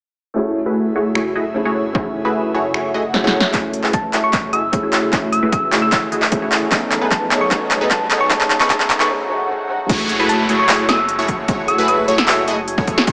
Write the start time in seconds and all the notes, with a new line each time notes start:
0.34 F#2 C#3 A3 C#4 E4 F#4 G#4 C#5 E5
0.66 A3 E4 F#4 G#4 B4
0.96 A3 E4 F#4 G#4 C#5
1.15 A3 E4 F#4 G#4 C#5, finger snap
1.35 A3 E4 F#4 G#4 D#5
1.54 A3 C#4 E4 G#4
1.65 A3 E4 F#4 G#4 C#5
1.93 A3 C#4 E4 F#4 G#4 C#5, kick
2.25 A3 E4 F#4 G#4 B4
2.54 A3 E4 F#4 G#4 C#5
2.74 A3 E4 F#4 G#4 C#5, finger snap, swell
2.94 A3 E4 F#4 G#4 D#5
3.13 A3 C#4 E4 G#4, snare
3.24 A3 E4 F#4 G#4 C#5, snare
3.40 snare
3.52 F#2 C#3 A3 C#4 E4 F#4 G#4 E5, kick, clap, closed hi-hat, riser
3.56 G#4
3.73 closed hi-hat
3.84 A3 E4 F#4 G#4 B4, clap
3.93 A5, kick, closed hi-hat
4.13 A3 E4 F#4 G#4 C#5, clap, closed hi-hat
4.24 C#6
4.33 A3 E4 F#4 G#4 C#5, kick, clap, closed hi-hat
4.53 A3 E4 F#4 G#4 D#5 E6, closed hi-hat
4.72 A3 C#4 E4 G#4, kick, closed hi-hat
4.83 A3 E4 F#4 G#4 C#5
4.93 clap, closed hi-hat
5.11 A3 C#4 E4 F#4 G#4 C#5, kick, clap, closed hi-hat
5.32 E6, closed hi-hat
5.43 A3 E4 F#4 G#4 B4
5.52 E6, kick, closed hi-hat
5.72 A3 E4 F#4 G#4 C#5, clap, closed hi-hat
5.82 E6
5.92 A3 E4 F#4 G#4 C#5 E6, kick, clap, closed hi-hat
6.12 A3 E4 F#4 G#4 D#5, closed hi-hat
6.22 clap
6.31 A3 C#4 E4 G#4, kick, closed hi-hat
6.42 A3 E4 F#4 G#4 C#5
6.52 clap, closed hi-hat
6.70 B2 F#3 A3 B3 C#4 D#4 G#4 A4 C#5 D#5, kick, clap, closed hi-hat
6.92 clap, closed hi-hat
7.01 B3 D#4 G#4 A4 B4
7.11 A5, kick, clap, closed hi-hat
7.31 B3 D#4 G#4 A4 C#5, clap, closed hi-hat
7.41 C#6
7.49 A3 B3 C#4 D#4 G#4 A4 C#5, kick, clap, closed hi-hat
7.71 clap, closed hi-hat
7.81 B3 D#4 G#4 A4 B4
7.91 A5, kick, clap, closed hi-hat
8.11 B3 D#4 G#4 A4 C#5, clap, closed hi-hat
8.21 C#6
8.28 A3 B3 C#4 D#4 G#4 A4 C#5 A5, kick, clap, closed hi-hat
8.32 G#4
8.41 clap
8.50 clap, closed hi-hat
8.60 B3 D#4 G#4 A4 B4 C#6, clap
8.68 A3 C#4 D#4 C#5 A5, kick, clap, closed hi-hat
8.72 G#4
8.80 clap
8.90 clap, closed hi-hat
9.00 B3 D#4 G#4 A4 B4 C#6, clap
9.08 A3 C#4 D#4, swell
9.12 G#4
9.28 A3 C#4 D#4
9.32 G#4
9.48 A3 C#4 D#4
9.52 G#4
9.68 A3 C#4 D#4
9.72 G#4
9.89 F#1 A3 E4 F#4 G#4 C#5 C#6, kick, closed hi-hat, crash, downlifter
10.09 G#4, closed hi-hat
10.19 A3 E4 F#4 G#4 A4 B4 B5
10.29 C#5 A5, closed hi-hat
10.39 F#4
10.49 A3 E4 F#4 G#4 C#5 C#6, closed hi-hat
10.59 G#4 C#6
10.69 A3 E4 F#4 G#4 A4 C#5 C#6, clap, closed hi-hat
10.79 C#5
10.89 A3 E4 F#4 G#4 D#5 D#6 E6, snare, closed hi-hat
11.09 G#4, closed hi-hat
11.19 A3 E4 F#4 G#4 A4 C#5 C#6
11.28 C#5, kick, closed hi-hat
11.39 F#4
11.48 A3 E4 F#4 G#4 C#5 C#6, kick, closed hi-hat
11.68 G#4 E6, closed hi-hat
11.78 A3 E4 F#4 G#4 A4 B4 B5
11.88 C#5 E6, closed hi-hat
11.98 F#4
12.08 A3 E4 F#4 G#4 C#5 C#6, closed hi-hat
12.18 G#4 E6, snare
12.28 A3 E4 F#4 G#4 A4 C#5 C#6 E6, clap, closed hi-hat
12.38 C#5
12.48 A3 E4 F#4 G#4 D#5 D#6, closed hi-hat
12.68 G#4, closed hi-hat
12.78 A3 E4 F#4 G#4 A4 C#5 C#6, kick
12.87 C#5, kick, closed hi-hat
12.98 F#4, snare
13.07 B1 B3 D#4 F#4 G#4 A4 C#5 C#6, kick, closed hi-hat